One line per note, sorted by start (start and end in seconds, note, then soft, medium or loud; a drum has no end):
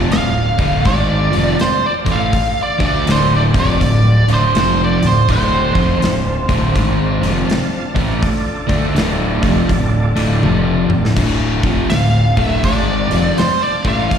0.00 0.11 F2 medium
0.00 0.11 C3 medium
0.00 0.11 F3 medium
0.00 2.30 D4 medium
0.00 2.30 D5 medium
0.00 2.30 F5 medium
0.00 2.30 A5 medium
0.11 0.56 D1 medium
0.11 0.49 D2 medium
0.11 0.49 A2 medium
0.11 0.86 F5 medium
0.11 snare loud
0.11 open hi-hat medium
0.58 0.84 D1 medium
0.58 0.84 D2 medium
0.58 0.85 A2 medium
0.58 0.85 D3 medium
0.58 kick loud
0.58 open hi-hat soft
0.84 1.29 G#1 medium
0.84 1.31 G#2 medium
0.84 1.31 D#3 medium
0.84 1.31 G#3 medium
0.84 1.56 D5 medium
0.84 kick medium
0.84 open hi-hat medium
1.31 1.58 F1 medium
1.31 1.57 F2 medium
1.31 1.58 C3 medium
1.31 1.58 F3 medium
1.31 open hi-hat soft
1.58 1.85 C5 medium
1.58 muted overdriven electric guitar stroke medium
1.58 muted fingered electric bass stroke soft
1.58 snare loud
1.58 open hi-hat medium
1.86 1.93 D5 medium
2.05 2.31 A1 medium
2.05 2.32 A2 medium
2.05 2.32 E3 medium
2.05 2.32 A3 medium
2.05 kick medium
2.05 open hi-hat soft
2.12 2.15 E5 medium
2.12 2.61 F5 medium
2.32 5.25 D4 medium
2.32 5.25 F4 medium
2.32 5.25 A4 medium
2.32 muted overdriven electric guitar stroke soft
2.32 muted fingered electric bass stroke soft
2.32 kick loud
2.32 open hi-hat medium
2.63 2.85 D5 medium
2.79 3.05 D2 medium
2.79 3.05 D3 medium
2.79 3.06 A3 medium
2.79 3.06 D4 loud
2.79 kick loud
2.79 open hi-hat soft
2.86 3.09 D5 medium
3.07 3.50 D1 medium
3.07 3.52 D2 medium
3.07 3.53 A2 medium
3.07 3.53 D3 loud
3.07 snare loud
3.07 open hi-hat medium
3.11 3.32 C5 medium
3.36 3.42 D5 medium
3.54 3.79 F1 medium
3.54 3.80 F2 medium
3.54 3.80 C3 medium
3.54 3.81 F3 loud
3.54 kick medium
3.54 open hi-hat soft
3.59 4.27 D5 medium
3.81 4.25 D1 medium
3.81 4.19 D2 medium
3.81 4.19 A2 medium
3.81 kick medium
3.81 open hi-hat medium
4.28 4.52 D1 medium
4.28 4.54 D2 medium
4.28 4.54 A2 medium
4.28 4.55 D3 medium
4.28 open hi-hat medium
4.34 4.57 C5 medium
4.55 4.98 F1 medium
4.55 5.00 F2 medium
4.55 5.01 C3 medium
4.55 5.01 F3 medium
4.55 snare loud
4.55 open hi-hat medium
4.60 4.80 C5 medium
4.84 5.07 D5 medium
5.02 5.27 D1 medium
5.02 5.23 D2 medium
5.02 5.23 A2 medium
5.02 open hi-hat soft
5.07 5.28 C5 medium
5.28 5.72 D1 medium
5.28 5.73 D2 medium
5.28 5.74 A2 medium
5.28 5.74 D3 loud
5.28 8.20 D4 medium
5.28 8.20 C5 medium
5.28 8.20 F5 medium
5.28 8.20 A5 medium
5.28 kick loud
5.28 open hi-hat medium
5.75 6.00 F1 medium
5.75 6.00 F2 medium
5.75 6.01 C3 medium
5.75 6.01 F3 medium
5.75 kick loud
5.75 open hi-hat soft
6.01 6.45 D1 medium
6.01 6.39 D2 medium
6.01 6.39 A2 medium
6.01 snare loud
6.01 open hi-hat medium
6.48 6.74 D1 medium
6.48 6.74 D2 medium
6.48 6.75 A2 medium
6.48 6.75 D3 medium
6.48 kick loud
6.48 open hi-hat soft
6.75 7.19 G#1 medium
6.75 7.20 G#2 medium
6.75 7.21 D#3 medium
6.75 7.21 G#3 medium
6.75 kick medium
6.75 open hi-hat medium
7.22 7.47 F1 medium
7.22 7.48 F2 medium
7.22 7.48 C3 medium
7.22 7.49 F3 medium
7.22 open hi-hat soft
7.48 muted overdriven electric guitar stroke medium
7.48 muted fingered electric bass stroke soft
7.48 snare loud
7.48 open hi-hat medium
7.95 8.21 A1 medium
7.95 8.21 A2 medium
7.95 8.21 E3 medium
7.95 8.22 A3 medium
7.95 kick medium
7.95 open hi-hat soft
8.21 11.13 D4 medium
8.21 11.13 F4 medium
8.21 11.14 A4 medium
8.21 11.13 D5 medium
8.21 muted overdriven electric guitar stroke soft
8.21 muted fingered electric bass stroke soft
8.21 kick loud
8.21 open hi-hat medium
8.68 8.94 D2 medium
8.68 8.94 D3 medium
8.68 8.95 A3 medium
8.68 8.95 D4 loud
8.68 kick medium
8.68 open hi-hat soft
8.94 9.39 D1 medium
8.94 9.41 D2 medium
8.94 9.41 A2 medium
8.94 9.41 D3 loud
8.94 snare loud
8.94 open hi-hat medium
9.42 9.68 F1 medium
9.42 9.68 F2 medium
9.42 9.68 C3 medium
9.42 9.69 F3 medium
9.42 kick loud
9.42 open hi-hat soft
9.69 10.13 D1 medium
9.69 10.07 D2 medium
9.69 10.07 A2 medium
9.69 kick medium
9.69 open hi-hat medium
10.16 10.41 D1 medium
10.16 10.42 D2 medium
10.16 10.42 A2 medium
10.16 10.43 D3 medium
10.16 open hi-hat soft
10.42 10.86 F1 medium
10.42 10.88 F2 medium
10.42 10.89 C3 medium
10.42 10.89 F3 loud
10.42 high tom medium
10.89 11.15 D1 medium
10.89 11.12 D2 medium
10.89 11.12 A2 medium
10.89 mid tom medium
11.05 snare medium
11.15 11.60 D1 medium
11.15 11.62 D2 medium
11.15 11.63 A2 medium
11.15 11.63 D3 loud
11.15 14.08 D4 medium
11.15 14.08 F5 medium
11.15 14.07 A5 medium
11.15 kick medium
11.15 open hi-hat medium
11.15 crash medium
11.63 11.88 F1 medium
11.63 11.90 F2 medium
11.63 11.90 C3 medium
11.63 11.90 F3 medium
11.63 kick loud
11.63 open hi-hat soft
11.90 12.34 D1 medium
11.90 12.28 D2 medium
11.90 12.28 A2 medium
11.90 12.43 F5 medium
11.90 snare loud
11.90 open hi-hat medium
12.37 12.62 D1 medium
12.37 12.63 D2 medium
12.37 12.63 A2 medium
12.37 12.64 D3 medium
12.37 kick loud
12.37 open hi-hat soft
12.43 12.64 E5 medium
12.64 13.08 G#1 medium
12.64 13.10 G#2 medium
12.64 13.10 D#3 medium
12.64 13.10 G#3 medium
12.64 13.40 D5 medium
12.64 kick loud
12.64 open hi-hat medium
13.10 13.36 F1 medium
13.10 13.37 F2 medium
13.10 13.37 C3 medium
13.10 13.37 F3 medium
13.10 open hi-hat soft
13.37 13.63 C5 medium
13.37 muted fingered electric bass stroke soft
13.37 muted overdriven electric guitar stroke soft
13.37 snare loud
13.37 open hi-hat medium
13.62 13.88 D5 medium
13.85 14.10 A1 medium
13.85 14.10 A2 medium
13.85 14.11 E3 medium
13.85 14.11 A3 medium
13.85 14.19 F5 medium
13.85 kick medium
13.85 open hi-hat soft
14.10 14.19 D4 medium
14.10 14.19 F4 medium
14.10 14.19 A4 medium
14.10 muted overdriven electric guitar stroke medium
14.10 muted fingered electric bass stroke soft
14.10 kick medium
14.10 open hi-hat medium